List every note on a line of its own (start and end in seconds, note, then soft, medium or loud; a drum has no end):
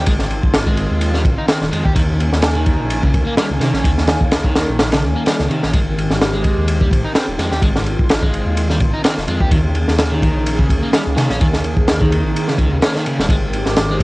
0.00 9.48 D#3 medium
0.00 1.92 C4 medium
0.06 0.40 G#1 loud
0.06 0.12 G#3 medium
0.06 1.94 F4 medium
0.06 kick loud
0.06 ride medium
0.19 snare soft
0.30 ride medium
0.43 0.52 G#1 loud
0.43 kick medium
0.54 0.87 G#1 medium
0.54 snare loud
0.54 ride medium
0.66 1.13 G#3 medium
0.66 kick medium
0.77 ride medium
0.91 1.26 D#2 medium
1.01 ride medium
1.14 1.21 G3 medium
1.14 snare soft
1.25 1.36 G#1 medium
1.25 kick medium
1.25 ride medium
1.38 1.47 D#4 medium
1.48 1.57 C4 medium
1.48 snare loud
1.48 ride medium
1.61 1.70 D#1 medium
1.61 snare soft
1.71 1.83 F2 medium
1.71 1.84 G#3 medium
1.71 ride medium
1.84 1.94 D#2 medium
1.84 1.92 G4 medium
1.84 kick medium
1.95 2.29 D#2 medium
1.95 2.01 D#3 medium
1.95 5.70 A#3 medium
1.95 5.70 C#4 medium
1.95 5.70 G#5 medium
1.95 kick loud
1.95 ride loud
2.20 ride medium
2.32 2.41 D#2 loud
2.32 snare soft
2.42 2.76 D#2 medium
2.42 snare loud
2.42 ride medium
2.55 3.02 D#3 medium
2.66 kick medium
2.66 ride medium
2.80 3.16 A#1 medium
2.90 ride medium
3.03 3.10 C#3 medium
3.03 kick medium
3.14 3.25 D#2 medium
3.14 kick loud
3.14 ride medium
3.26 3.36 A#3 medium
3.37 3.47 G3 medium
3.37 snare loud
3.37 ride medium
3.50 3.59 C#2 medium
3.60 3.72 C3 medium
3.60 3.73 D#3 medium
3.60 snare soft
3.60 ride medium
3.73 3.83 A#1 medium
3.73 3.81 C#4 medium
3.73 snare soft
3.84 4.18 D#2 medium
3.84 3.90 D#3 medium
3.84 kick loud
3.84 ride medium
3.98 snare soft
4.07 snare loud
4.07 ride medium
4.21 4.30 D#2 loud
4.21 kick medium
4.31 4.65 D#2 medium
4.31 snare loud
4.31 ride medium
4.44 4.91 D#3 medium
4.44 kick medium
4.55 snare loud
4.55 ride medium
4.69 5.04 A#1 medium
4.79 snare loud
4.79 ride medium
4.92 5.00 C#3 medium
4.92 snare loud
4.92 ride medium
5.03 5.14 D#2 medium
5.15 5.25 A#3 medium
5.26 5.35 G3 medium
5.26 snare loud
5.26 ride medium
5.39 5.49 C#2 medium
5.39 snare soft
5.50 5.61 C3 medium
5.50 5.62 D#3 medium
5.50 ride medium
5.63 5.72 A#1 medium
5.63 5.70 C#4 medium
5.63 snare soft
5.73 6.07 G#1 medium
5.73 5.79 G#3 medium
5.73 9.47 C4 medium
5.73 7.60 G4 medium
5.73 kick loud
5.73 ride medium
5.98 ride medium
6.10 6.19 G#1 loud
6.10 snare soft
6.20 6.54 G#1 medium
6.20 snare loud
6.20 ride medium
6.33 6.80 G#3 medium
6.44 kick medium
6.44 ride medium
6.57 6.93 D#2 medium
6.68 ride medium
6.81 6.88 G3 medium
6.81 kick medium
6.91 7.02 G#1 medium
6.91 kick medium
6.91 ride medium
7.05 7.14 D#4 medium
7.15 7.24 C4 medium
7.15 snare loud
7.15 ride medium
7.28 7.37 D#1 medium
7.38 7.50 F2 medium
7.38 7.51 G#3 medium
7.38 snare soft
7.38 ride medium
7.51 7.61 D#2 medium
7.51 7.59 G4 medium
7.51 snare soft
7.62 7.96 G#1 medium
7.62 7.68 G#3 medium
7.62 9.49 F4 medium
7.62 kick loud
7.62 ride medium
7.76 snare soft
7.86 ride medium
7.99 8.08 G#1 loud
7.99 kick medium
8.09 8.43 G#1 medium
8.09 snare loud
8.09 ride medium
8.22 8.68 G#3 medium
8.22 kick medium
8.34 ride medium
8.46 8.82 D#2 medium
8.57 ride medium
8.70 8.77 G3 medium
8.70 snare soft
8.80 8.92 G#1 medium
8.80 kick loud
8.80 ride medium
8.93 9.03 D#4 medium
9.04 9.13 C4 medium
9.04 snare loud
9.04 ride medium
9.17 9.26 D#1 medium
9.17 snare soft
9.28 9.39 F2 medium
9.28 9.40 G#3 medium
9.28 ride medium
9.40 9.50 D#2 medium
9.40 9.48 G4 medium
9.40 kick medium
9.51 9.85 D#2 medium
9.51 9.57 D#3 medium
9.51 14.03 D#3 medium
9.51 13.26 A#3 medium
9.51 11.39 C#4 medium
9.51 13.26 G#4 medium
9.51 kick loud
9.51 ride medium
9.75 ride medium
9.88 9.97 D#2 loud
9.88 snare soft
9.98 10.32 D#2 medium
9.98 snare loud
9.98 ride medium
10.11 10.58 D#3 medium
10.22 kick medium
10.22 ride medium
10.35 10.71 A#1 medium
10.46 ride medium
10.59 10.67 C#3 medium
10.59 kick medium
10.69 10.81 D#2 medium
10.69 kick medium
10.69 ride medium
10.82 10.92 A#3 medium
10.93 11.02 G3 medium
10.93 snare loud
10.93 ride medium
11.07 11.15 C#2 medium
11.17 11.28 C3 medium
11.17 11.29 D#3 medium
11.17 snare soft
11.17 ride medium
11.30 11.39 A#1 medium
11.30 11.37 C#4 medium
11.30 snare soft
11.41 11.74 D#2 medium
11.41 11.46 D#3 medium
11.41 14.03 C4 medium
11.41 kick loud
11.41 ride medium
11.53 snare soft
11.64 ride medium
11.77 11.86 D#2 loud
11.77 kick medium
11.88 12.21 D#2 medium
11.88 snare loud
11.88 ride medium
12.01 12.47 D#3 medium
12.01 kick loud
12.12 ride medium
12.25 12.33 A#1 medium
12.36 ride medium
12.48 12.56 C#3 medium
12.48 snare soft
12.58 12.69 C#2 medium
12.58 12.71 D#3 medium
12.58 kick medium
12.58 ride medium
12.72 12.81 D#2 medium
12.72 12.76 C#3 medium
12.82 12.92 C#4 loud
12.82 snare loud
12.82 ride medium
12.95 13.03 D#3 loud
12.95 snare soft
13.06 13.18 C#3 medium
13.06 ride medium
13.19 13.28 D#1 medium
13.19 13.24 G3 loud
13.19 snare medium
13.29 13.62 G#1 loud
13.29 13.35 G#3 medium
13.29 14.03 G4 medium
13.29 kick loud
13.29 ride medium
13.53 ride medium
13.66 13.75 G#1 loud
13.66 snare soft
13.76 14.03 G#1 medium
13.76 snare loud
13.76 ride medium
13.90 14.03 G#3 medium